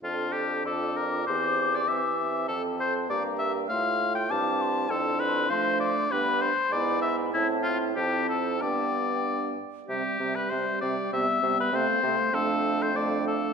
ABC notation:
X:1
M:2/4
L:1/16
Q:1/4=98
K:F
V:1 name="Flute"
a4 d'4- | d'8 | a4 b4 | c'4 d'2 c'2 |
[K:C] c'8 | b2 z2 b4 | a4 a4 | g6 z2 |
e2 e2 e2 e2 | e2 e2 f2 f2 | f4 f4 |]
V:2 name="Oboe"
F2 G2 A2 B2 | c3 d e4 | A2 c2 d2 e2 | f3 g a4 |
[K:C] A2 B2 c2 d2 | B2 c2 d2 e2 | E2 F2 G2 A2 | d6 z2 |
G3 B c2 d2 | e3 B c4 | A3 c d2 A2 |]
V:3 name="Clarinet"
A4 F4 | G4 G4 | A4 G4 | F4 E4- |
[K:C] E4 D4 | D2 z2 E4 | E4 E4 | D6 z2 |
C2 C2 C2 C2 | B,2 B,2 C2 C2 | D4 D4 |]
V:4 name="French horn"
D8 | C4 C2 C2- | C4 B,4 | A,4 C4 |
[K:C] D4 A,4 | B,2 z2 B,4 | C4 C4 | B,6 z2 |
G,2 G,2 G,2 G,2 | G,2 G,2 A,2 A,2 | A,4 A,4 |]
V:5 name="Bassoon" clef=bass
F,,4 F,,4 | E,,4 E,4 | F,,4 G,,4 | A,,4 G,,4 |
[K:C] F,,4 F,4 | G,,2 z2 ^G,,4 | A,,4 F,,4 | G,,6 z2 |
C,2 C,2 C,2 C,2 | C,2 C,2 C,2 C,2 | F,,8 |]